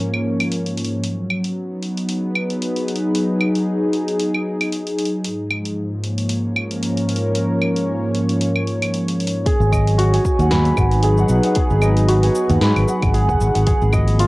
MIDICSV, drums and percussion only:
0, 0, Header, 1, 3, 480
1, 0, Start_track
1, 0, Tempo, 526316
1, 945, Time_signature, 4, 2, 24, 8
1, 13015, End_track
2, 0, Start_track
2, 0, Title_t, "Udu"
2, 9591, Note_on_c, 9, 64, 88
2, 9683, Note_off_c, 9, 64, 0
2, 11399, Note_on_c, 9, 64, 101
2, 11491, Note_off_c, 9, 64, 0
2, 13015, End_track
3, 0, Start_track
3, 0, Title_t, "Drums"
3, 126, Note_on_c, 9, 75, 53
3, 217, Note_off_c, 9, 75, 0
3, 367, Note_on_c, 9, 46, 33
3, 367, Note_on_c, 9, 75, 64
3, 458, Note_off_c, 9, 46, 0
3, 458, Note_off_c, 9, 75, 0
3, 472, Note_on_c, 9, 46, 44
3, 563, Note_off_c, 9, 46, 0
3, 605, Note_on_c, 9, 46, 36
3, 696, Note_off_c, 9, 46, 0
3, 707, Note_on_c, 9, 46, 36
3, 772, Note_off_c, 9, 46, 0
3, 772, Note_on_c, 9, 46, 47
3, 863, Note_off_c, 9, 46, 0
3, 946, Note_on_c, 9, 46, 47
3, 1037, Note_off_c, 9, 46, 0
3, 1188, Note_on_c, 9, 75, 63
3, 1279, Note_off_c, 9, 75, 0
3, 1316, Note_on_c, 9, 46, 39
3, 1407, Note_off_c, 9, 46, 0
3, 1665, Note_on_c, 9, 46, 26
3, 1756, Note_off_c, 9, 46, 0
3, 1800, Note_on_c, 9, 46, 38
3, 1891, Note_off_c, 9, 46, 0
3, 1903, Note_on_c, 9, 46, 45
3, 1995, Note_off_c, 9, 46, 0
3, 2147, Note_on_c, 9, 75, 72
3, 2238, Note_off_c, 9, 75, 0
3, 2281, Note_on_c, 9, 46, 35
3, 2372, Note_off_c, 9, 46, 0
3, 2388, Note_on_c, 9, 46, 44
3, 2479, Note_off_c, 9, 46, 0
3, 2518, Note_on_c, 9, 46, 40
3, 2610, Note_off_c, 9, 46, 0
3, 2627, Note_on_c, 9, 46, 34
3, 2694, Note_off_c, 9, 46, 0
3, 2694, Note_on_c, 9, 46, 44
3, 2786, Note_off_c, 9, 46, 0
3, 2870, Note_on_c, 9, 46, 50
3, 2961, Note_off_c, 9, 46, 0
3, 3105, Note_on_c, 9, 75, 67
3, 3196, Note_off_c, 9, 75, 0
3, 3239, Note_on_c, 9, 46, 37
3, 3330, Note_off_c, 9, 46, 0
3, 3584, Note_on_c, 9, 46, 29
3, 3676, Note_off_c, 9, 46, 0
3, 3720, Note_on_c, 9, 46, 39
3, 3811, Note_off_c, 9, 46, 0
3, 3825, Note_on_c, 9, 46, 49
3, 3916, Note_off_c, 9, 46, 0
3, 3961, Note_on_c, 9, 75, 53
3, 4053, Note_off_c, 9, 75, 0
3, 4202, Note_on_c, 9, 46, 36
3, 4202, Note_on_c, 9, 75, 67
3, 4293, Note_off_c, 9, 46, 0
3, 4293, Note_off_c, 9, 75, 0
3, 4308, Note_on_c, 9, 46, 45
3, 4399, Note_off_c, 9, 46, 0
3, 4439, Note_on_c, 9, 46, 39
3, 4530, Note_off_c, 9, 46, 0
3, 4546, Note_on_c, 9, 46, 39
3, 4609, Note_off_c, 9, 46, 0
3, 4609, Note_on_c, 9, 46, 47
3, 4700, Note_off_c, 9, 46, 0
3, 4783, Note_on_c, 9, 46, 51
3, 4875, Note_off_c, 9, 46, 0
3, 5022, Note_on_c, 9, 75, 74
3, 5114, Note_off_c, 9, 75, 0
3, 5158, Note_on_c, 9, 46, 42
3, 5249, Note_off_c, 9, 46, 0
3, 5506, Note_on_c, 9, 46, 29
3, 5597, Note_off_c, 9, 46, 0
3, 5636, Note_on_c, 9, 46, 42
3, 5727, Note_off_c, 9, 46, 0
3, 5739, Note_on_c, 9, 46, 52
3, 5831, Note_off_c, 9, 46, 0
3, 5985, Note_on_c, 9, 75, 75
3, 6077, Note_off_c, 9, 75, 0
3, 6119, Note_on_c, 9, 46, 41
3, 6211, Note_off_c, 9, 46, 0
3, 6227, Note_on_c, 9, 46, 49
3, 6318, Note_off_c, 9, 46, 0
3, 6359, Note_on_c, 9, 46, 42
3, 6451, Note_off_c, 9, 46, 0
3, 6464, Note_on_c, 9, 46, 39
3, 6530, Note_off_c, 9, 46, 0
3, 6530, Note_on_c, 9, 46, 50
3, 6621, Note_off_c, 9, 46, 0
3, 6703, Note_on_c, 9, 46, 55
3, 6794, Note_off_c, 9, 46, 0
3, 6945, Note_on_c, 9, 75, 68
3, 7037, Note_off_c, 9, 75, 0
3, 7079, Note_on_c, 9, 46, 43
3, 7170, Note_off_c, 9, 46, 0
3, 7429, Note_on_c, 9, 46, 31
3, 7520, Note_off_c, 9, 46, 0
3, 7562, Note_on_c, 9, 46, 40
3, 7653, Note_off_c, 9, 46, 0
3, 7669, Note_on_c, 9, 46, 52
3, 7760, Note_off_c, 9, 46, 0
3, 7803, Note_on_c, 9, 75, 59
3, 7894, Note_off_c, 9, 75, 0
3, 7909, Note_on_c, 9, 46, 29
3, 8001, Note_off_c, 9, 46, 0
3, 8046, Note_on_c, 9, 46, 42
3, 8046, Note_on_c, 9, 75, 69
3, 8137, Note_off_c, 9, 46, 0
3, 8137, Note_off_c, 9, 75, 0
3, 8151, Note_on_c, 9, 46, 49
3, 8243, Note_off_c, 9, 46, 0
3, 8284, Note_on_c, 9, 46, 41
3, 8375, Note_off_c, 9, 46, 0
3, 8391, Note_on_c, 9, 46, 42
3, 8456, Note_off_c, 9, 46, 0
3, 8456, Note_on_c, 9, 46, 51
3, 8547, Note_off_c, 9, 46, 0
3, 8630, Note_on_c, 9, 36, 123
3, 8630, Note_on_c, 9, 46, 68
3, 8632, Note_on_c, 9, 69, 47
3, 8721, Note_off_c, 9, 46, 0
3, 8722, Note_off_c, 9, 36, 0
3, 8723, Note_off_c, 9, 69, 0
3, 8765, Note_on_c, 9, 69, 21
3, 8856, Note_off_c, 9, 69, 0
3, 8871, Note_on_c, 9, 36, 60
3, 8871, Note_on_c, 9, 75, 75
3, 8873, Note_on_c, 9, 69, 71
3, 8962, Note_off_c, 9, 36, 0
3, 8963, Note_off_c, 9, 75, 0
3, 8965, Note_off_c, 9, 69, 0
3, 9006, Note_on_c, 9, 46, 34
3, 9008, Note_on_c, 9, 69, 34
3, 9098, Note_off_c, 9, 46, 0
3, 9100, Note_off_c, 9, 69, 0
3, 9110, Note_on_c, 9, 46, 70
3, 9112, Note_on_c, 9, 69, 42
3, 9201, Note_off_c, 9, 46, 0
3, 9203, Note_off_c, 9, 69, 0
3, 9247, Note_on_c, 9, 46, 52
3, 9249, Note_on_c, 9, 69, 24
3, 9338, Note_off_c, 9, 46, 0
3, 9340, Note_off_c, 9, 69, 0
3, 9349, Note_on_c, 9, 36, 106
3, 9349, Note_on_c, 9, 69, 85
3, 9440, Note_off_c, 9, 36, 0
3, 9440, Note_off_c, 9, 69, 0
3, 9479, Note_on_c, 9, 46, 30
3, 9481, Note_on_c, 9, 69, 33
3, 9571, Note_off_c, 9, 46, 0
3, 9572, Note_off_c, 9, 69, 0
3, 9584, Note_on_c, 9, 38, 76
3, 9584, Note_on_c, 9, 46, 66
3, 9586, Note_on_c, 9, 69, 44
3, 9676, Note_off_c, 9, 38, 0
3, 9676, Note_off_c, 9, 46, 0
3, 9678, Note_off_c, 9, 69, 0
3, 9716, Note_on_c, 9, 46, 33
3, 9718, Note_on_c, 9, 69, 22
3, 9807, Note_off_c, 9, 46, 0
3, 9809, Note_off_c, 9, 69, 0
3, 9823, Note_on_c, 9, 75, 75
3, 9825, Note_on_c, 9, 69, 77
3, 9829, Note_on_c, 9, 36, 94
3, 9914, Note_off_c, 9, 75, 0
3, 9916, Note_off_c, 9, 69, 0
3, 9920, Note_off_c, 9, 36, 0
3, 9954, Note_on_c, 9, 46, 31
3, 9956, Note_on_c, 9, 69, 31
3, 10046, Note_off_c, 9, 46, 0
3, 10047, Note_off_c, 9, 69, 0
3, 10057, Note_on_c, 9, 46, 64
3, 10059, Note_on_c, 9, 69, 44
3, 10148, Note_off_c, 9, 46, 0
3, 10150, Note_off_c, 9, 69, 0
3, 10191, Note_on_c, 9, 69, 23
3, 10282, Note_off_c, 9, 69, 0
3, 10293, Note_on_c, 9, 69, 83
3, 10384, Note_off_c, 9, 69, 0
3, 10428, Note_on_c, 9, 46, 50
3, 10430, Note_on_c, 9, 69, 36
3, 10520, Note_off_c, 9, 46, 0
3, 10521, Note_off_c, 9, 69, 0
3, 10535, Note_on_c, 9, 46, 70
3, 10537, Note_on_c, 9, 69, 47
3, 10548, Note_on_c, 9, 36, 127
3, 10626, Note_off_c, 9, 46, 0
3, 10628, Note_off_c, 9, 69, 0
3, 10639, Note_off_c, 9, 36, 0
3, 10672, Note_on_c, 9, 69, 22
3, 10763, Note_off_c, 9, 69, 0
3, 10777, Note_on_c, 9, 75, 68
3, 10779, Note_on_c, 9, 69, 70
3, 10868, Note_off_c, 9, 75, 0
3, 10870, Note_off_c, 9, 69, 0
3, 10914, Note_on_c, 9, 46, 33
3, 10916, Note_on_c, 9, 69, 37
3, 11005, Note_off_c, 9, 46, 0
3, 11007, Note_off_c, 9, 69, 0
3, 11022, Note_on_c, 9, 46, 66
3, 11024, Note_on_c, 9, 69, 46
3, 11113, Note_off_c, 9, 46, 0
3, 11115, Note_off_c, 9, 69, 0
3, 11155, Note_on_c, 9, 46, 47
3, 11157, Note_on_c, 9, 69, 24
3, 11246, Note_off_c, 9, 46, 0
3, 11248, Note_off_c, 9, 69, 0
3, 11263, Note_on_c, 9, 69, 90
3, 11354, Note_off_c, 9, 69, 0
3, 11395, Note_on_c, 9, 46, 32
3, 11397, Note_on_c, 9, 69, 34
3, 11486, Note_off_c, 9, 46, 0
3, 11488, Note_off_c, 9, 69, 0
3, 11503, Note_on_c, 9, 38, 81
3, 11503, Note_on_c, 9, 46, 68
3, 11505, Note_on_c, 9, 69, 42
3, 11594, Note_off_c, 9, 38, 0
3, 11594, Note_off_c, 9, 46, 0
3, 11596, Note_off_c, 9, 69, 0
3, 11639, Note_on_c, 9, 46, 31
3, 11639, Note_on_c, 9, 75, 61
3, 11641, Note_on_c, 9, 69, 22
3, 11731, Note_off_c, 9, 46, 0
3, 11731, Note_off_c, 9, 75, 0
3, 11733, Note_off_c, 9, 69, 0
3, 11747, Note_on_c, 9, 69, 84
3, 11838, Note_off_c, 9, 69, 0
3, 11878, Note_on_c, 9, 46, 31
3, 11878, Note_on_c, 9, 75, 72
3, 11880, Note_on_c, 9, 69, 34
3, 11882, Note_on_c, 9, 36, 110
3, 11970, Note_off_c, 9, 46, 0
3, 11970, Note_off_c, 9, 75, 0
3, 11971, Note_off_c, 9, 69, 0
3, 11973, Note_off_c, 9, 36, 0
3, 11986, Note_on_c, 9, 46, 63
3, 11988, Note_on_c, 9, 69, 46
3, 12077, Note_off_c, 9, 46, 0
3, 12079, Note_off_c, 9, 69, 0
3, 12121, Note_on_c, 9, 36, 64
3, 12122, Note_on_c, 9, 69, 24
3, 12212, Note_off_c, 9, 36, 0
3, 12213, Note_off_c, 9, 69, 0
3, 12226, Note_on_c, 9, 69, 82
3, 12317, Note_off_c, 9, 69, 0
3, 12360, Note_on_c, 9, 46, 48
3, 12362, Note_on_c, 9, 69, 37
3, 12451, Note_off_c, 9, 46, 0
3, 12453, Note_off_c, 9, 69, 0
3, 12464, Note_on_c, 9, 46, 71
3, 12466, Note_on_c, 9, 69, 51
3, 12468, Note_on_c, 9, 36, 119
3, 12555, Note_off_c, 9, 46, 0
3, 12557, Note_off_c, 9, 69, 0
3, 12559, Note_off_c, 9, 36, 0
3, 12598, Note_on_c, 9, 69, 21
3, 12689, Note_off_c, 9, 69, 0
3, 12701, Note_on_c, 9, 75, 71
3, 12703, Note_on_c, 9, 69, 77
3, 12708, Note_on_c, 9, 36, 67
3, 12792, Note_off_c, 9, 75, 0
3, 12794, Note_off_c, 9, 69, 0
3, 12799, Note_off_c, 9, 36, 0
3, 12837, Note_on_c, 9, 46, 31
3, 12839, Note_on_c, 9, 69, 35
3, 12929, Note_off_c, 9, 46, 0
3, 12930, Note_off_c, 9, 69, 0
3, 12944, Note_on_c, 9, 46, 66
3, 12946, Note_on_c, 9, 69, 47
3, 13015, Note_off_c, 9, 46, 0
3, 13015, Note_off_c, 9, 69, 0
3, 13015, End_track
0, 0, End_of_file